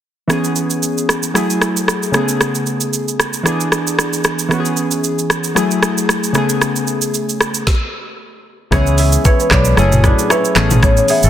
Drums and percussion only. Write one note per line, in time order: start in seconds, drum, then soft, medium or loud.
0.30 cross-stick medium
0.30 shaker medium
0.44 shaker soft
0.56 shaker medium
0.70 shaker medium
0.83 shaker medium
0.98 shaker soft
1.09 cross-stick medium
1.09 shaker soft
1.23 shaker medium
1.35 cross-stick medium
1.35 shaker medium
1.50 shaker medium
1.62 cross-stick medium
1.62 shaker soft
1.77 shaker medium
1.88 cross-stick medium
1.88 shaker medium
2.03 shaker medium
2.14 cross-stick medium
2.14 shaker soft
2.29 shaker medium
2.41 cross-stick medium
2.41 shaker medium
2.55 shaker soft
2.66 shaker medium
2.81 shaker medium
2.93 shaker medium
3.08 shaker soft
3.20 cross-stick medium
3.20 shaker soft
3.33 shaker medium
3.46 cross-stick medium
3.46 shaker medium
3.60 shaker medium
3.72 cross-stick medium
3.72 shaker medium
3.87 shaker medium
3.99 cross-stick medium
3.99 shaker medium
4.13 shaker medium
4.24 cross-stick medium
4.24 shaker medium
4.39 shaker medium
4.51 cross-stick medium
4.51 shaker medium
4.65 shaker medium
4.77 shaker medium
4.91 shaker medium
5.04 shaker medium
5.19 shaker soft
5.30 cross-stick medium
5.30 shaker soft
5.44 shaker medium
5.56 cross-stick medium
5.56 shaker medium
5.71 shaker medium
5.83 cross-stick medium
5.83 shaker soft
5.98 shaker medium
6.09 cross-stick medium
6.09 shaker medium
6.24 shaker medium
6.34 cross-stick medium
6.34 shaker medium
6.49 shaker medium
6.62 cross-stick medium
6.62 shaker medium
6.76 shaker medium
6.87 shaker medium
7.02 shaker medium
7.14 shaker medium
7.29 shaker soft
7.41 cross-stick medium
7.41 shaker soft
7.54 shaker medium
7.67 kick loud
7.67 snare medium
8.72 kick loud
8.72 cross-stick loud
8.72 low conga medium
8.72 shaker medium
8.87 shaker medium
8.98 open hi-hat medium
8.98 shaker medium
9.12 shaker medium
9.25 kick loud
9.25 high bongo medium
9.25 shaker medium
9.40 shaker soft
9.51 kick loud
9.51 cross-stick loud
9.51 clap medium
9.51 shaker medium
9.65 shaker medium
9.77 cross-stick medium
9.77 low conga medium
9.77 shaker medium
9.92 mid tom medium
9.92 shaker medium
10.04 kick medium
10.04 cross-stick medium
10.04 low bongo medium
10.04 shaker medium
10.19 shaker medium
10.30 cross-stick loud
10.30 high bongo medium
10.30 shaker medium
10.45 shaker medium
10.56 cross-stick loud
10.56 clap medium
10.56 low conga medium
10.56 shaker medium
10.71 mid tom loud
10.71 high bongo medium
10.71 low bongo medium
10.71 shaker medium
10.83 kick loud
10.83 cross-stick loud
10.83 low conga medium
10.83 shaker medium
10.97 shaker medium
11.08 open hi-hat medium
11.08 shaker medium
11.23 shaker medium